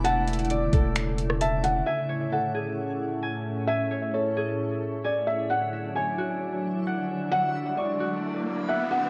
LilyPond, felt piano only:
\new Staff \with { instrumentName = "Felt piano" } { \time 4/4 \key a \major \tempo 4 = 132 fis''4 d''2 e''8 fis''8 | e''4 fis''2. | e''4 cis''2 d''8 e''8 | fis''4 gis''2. |
fis''4 d''2 e''8 fis''8 | }